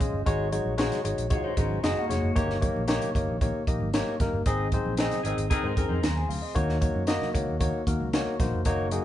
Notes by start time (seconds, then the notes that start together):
0.00 A#1 G#3 C#4 F4 D#5, kick, closed hi-hat, high conga, low conga
0.12 G1
0.26 G#1 G#3 D#4 F#4 C#5, kick, closed hi-hat, muted conga
0.52 G#3 D#4 F#4 C#5, closed hi-hat, high conga
0.65 A#1, high conga
0.78 G#3 D#4 F#4 C#5, snare, closed hi-hat, muted conga
0.91 snare, closed hi-hat, high conga, low conga
1.04 G#1 G#3 D#4 F#4 C#5, closed hi-hat
1.17 A#1, closed hi-hat
1.30 G#3 D#4 F4 F#4 C#5, kick, closed hi-hat, low conga
1.44 D#4 C5, muted fingered electric bass stroke, muted conga
1.57 G#1 G#3 C#4 D#4 F#4 A#4 C5, kick, closed hi-hat
1.70 high conga
1.83 F#1 G#3 C4 D#4 F#4 G#4 D#5, snare, closed hi-hat, muted conga, high conga
1.96 A#3 F#4, muted conga
2.09 F1 G#3 D#4 F#4 C#5, snare, closed hi-hat, high conga, low conga
2.23 F#1
2.35 G1 A#3 D#4 G4 C#5, kick, closed hi-hat
2.50 snare
2.61 A#3 D#4 G4 C#5, kick, closed hi-hat, high conga
2.76 A#1, high conga
2.88 A#3 D#4 G4 C#5, snare, closed hi-hat
3.02 closed hi-hat, muted conga, high conga, low conga
3.15 G1 A#3 D#4 G4 C#5, kick, closed hi-hat
3.28 A#1
3.41 A#3 D#4 G4 C#5, kick, closed hi-hat, low conga
3.67 A#1 A#3 D#4 G4 D#5, kick, closed hi-hat
3.80 G#1, high conga
3.94 A#3 D#4 G4 C#5, snare, closed hi-hat, muted conga, high conga
4.07 muted conga
4.20 G1 A#3 D#4 G4 A#4, kick, snare, closed hi-hat, high conga, low conga
4.33 G1
4.46 G#1 C4 D#4 G#4 D#5, kick, closed hi-hat
4.72 C4 D#4 G#4 C5, kick, closed hi-hat, high conga
4.85 A#1, high conga
4.97 D#3 C4 D#4 G#4 D#5, snare, closed hi-hat
5.11 snare, closed hi-hat, high conga, low conga
5.23 G#1 D#3 C4 D#4 G#4 D#5, closed hi-hat
5.37 G#1, closed hi-hat
5.50 D#3 C4 D#4 G#4 A#4, kick, closed hi-hat, low conga
5.63 G#2 D#4 C5, muted conga
5.76 F#2 C4 D#4 G#4 A#4, kick, closed hi-hat
5.89 F2 D#4 C5, high conga
6.03 D#2 A#4 C6, snare, closed hi-hat, muted conga, high conga
6.16 C4 G#4 G#5, muted conga
6.29 D2 F5, open hi-hat, high conga, low conga
6.42 D#5
6.55 D#2 A#3 D#4 F#4 C#5, kick, closed hi-hat, muted conga
6.69 snare
6.81 A#3 D#4 F#4 C#5, kick, closed hi-hat, high conga
6.95 F#2, high conga
7.07 A#3 D#4 F#4 D#5, snare, closed hi-hat, muted conga
7.22 snare, muted conga, high conga, low conga
7.34 C#2 A#3 D#4 F#4 C#5, kick, closed hi-hat
7.48 D#2
7.60 A#3 D#4 F#4 C#5, kick, closed hi-hat, muted conga, low conga
7.74 muted conga
7.87 D#2 A#3 D#4 F#4 A#4, kick, closed hi-hat
8.00 C#2, high conga
8.13 A#3 D#4 F#4 C#5, snare, closed hi-hat, muted conga, high conga
8.27 muted conga
8.39 A#1 A#3 D#4 F#4 C5, kick, snare, closed hi-hat, high conga, low conga
8.53 F1
8.65 F#1 A#3 D#4 F#4 C#5, kick, closed hi-hat
8.91 A#3 D#4 F#4 G#4, closed hi-hat, high conga